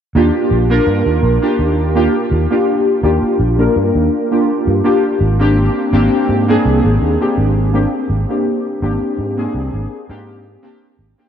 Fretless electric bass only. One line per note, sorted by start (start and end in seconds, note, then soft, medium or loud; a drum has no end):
0.15 0.29 D#2 medium
0.51 0.78 A#1 medium
0.87 1.01 G2 medium
1.06 1.18 D#2 medium
1.23 1.37 A#1 loud
1.59 2.06 D#2 medium
2.32 2.46 D#2 medium
3.04 3.18 D#2 loud
3.23 muted fretless electric bass stroke soft
3.40 3.67 A#1 medium
3.76 3.90 G2 medium
3.95 4.08 D#2 medium
4.67 4.80 G2 medium
5.21 5.68 G#1 loud
5.93 6.07 G#1 loud
6.29 6.56 G#2 medium
6.65 6.79 C2 medium
6.84 6.97 G#1 medium
7.02 7.16 D#2 loud
7.38 7.85 G#1 medium
8.10 8.24 G#1 medium
8.82 8.96 G#1 loud
9.18 9.45 G#2 medium
9.54 9.68 C2 medium
9.73 9.86 G#1 medium
10.09 10.55 G#2 medium
10.99 11.13 G#1 medium